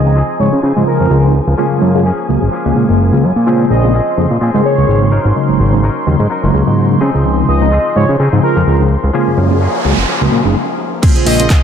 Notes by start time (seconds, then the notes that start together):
Already playing: C#2 F3 C4 D#4 G#4 D#5 G#5
0.05 C#3 F3 G#3 C4 D#4
0.16 F3 C4 D#4 G#4
0.39 G#2 C#3 F3 G#3 C4 F4 C#5
0.53 C#3
0.62 C#3 F3 C4 D#4
0.67 G#4
0.76 G#2 C#3 F3 G#3 C4 F4
0.87 A#4
1.00 F2
1.11 C#2
1.23 C#3 F3 G#3 C4 D#4
1.47 C#2
1.58 C#3 F3 G#3 A#3 C#4 F4 G#4
1.71 F#2
1.81 F#2
1.94 C#3 F#3 G#3 A#3 F4
2.05 F3 A#3 C#4 G#4
2.28 C#2 C#3 F#3 G#3 A#3 F#4
2.42 F#1
2.51 F3 A#3 C#4
2.56 G#4
2.65 C#2 C#3 G#3 A#3 F#5
2.76 A#2
2.89 F#1
3.12 C#2 C#3 F#3 G#3 A#3 F4
3.23 F#2
3.36 A#2
3.46 C#3 F3 G#3 A#3 C4 C#4 F4 G#4 C5 C6
3.70 A#1 D#5
3.83 C#3 G#3 A#3 C4 F4
3.93 F3 C4 C#4 G#4
4.17 F2 C#3 G#3 A#3 C4 G#4
4.31 A#2
4.41 A#2 F3 C4 C#4 G#4
4.54 G#2 C#3 G#3 A#3 G#4 A#4
4.65 C#5
4.78 C#2
4.88 G#1
5.01 C#3 G#3 A#3 C4 F4
5.12 F#3 C#4 D#4 A#4
5.25 G#1
5.36 C#3 F#3 G#3 A#3 D#4
5.49 G#1
5.59 G#1
5.72 C#3 F#3 G#3 A#3 D#4
5.82 F#3 C#4 D#4 A#4
6.06 D#2 C#3 F#3 G#3 A#3 F4
6.20 G#2
6.30 F#3 C#4 D#4 A#4
6.43 F#1 C#3 F#3 G#3 A#3 F4
6.54 C#2
6.67 G#2
6.90 C#3 F#3 G#3 A#3 D#4
7.01 C#3 F3 C4 D#4 G#4
7.14 C#2
7.25 C#3 F3 G#3 C4 D#4
7.48 C#2 D#5
7.61 C#3 F3 G#3 C4 D#4
7.71 F3 C4 D#4 G#4
7.95 G#2 C#3 F3 G#3 C4 F4 C#5
8.09 C#3
8.18 C#3 F3 C4 D#4
8.23 G#4
8.32 G#2 C#3 F3 G#3 C4 F4
8.43 A#4
8.56 F2
8.67 C#2
8.79 C#3 F3 G#3 C4 D#4
9.04 C#2
9.13 C#3 F3 G#3 A#3 C#4 F4 G#4, noise sweep
9.27 F#2
9.37 F#2
9.50 C#3 F#3 G#3 A#3 F4
9.60 F3 A#3 C#4 G#4
9.84 C#2 C#3 F#3 G#3 A#3 F#4
9.98 F#1
10.07 F3 A#3 C#4
10.12 G#4
10.21 C#2 C#3 F#3 G#3 A#3 F#4
10.32 A#2
10.45 F#1 C#3 F#3 G#3 A#3 D#4
11.02 C#3 F3 G#3 A#3 C4 C#4 F4 G#4 C5 C6, kick, closed hi-hat, crash
11.15 A#1 C4 C#4 G#4, closed hi-hat
11.26 A#1 F3 C4 C#4 G#4 D#5, open hi-hat
11.39 C#3 G#3 A#3 C4 F4, closed hi-hat
11.50 C4 C#4 G#4, kick, clap, closed hi-hat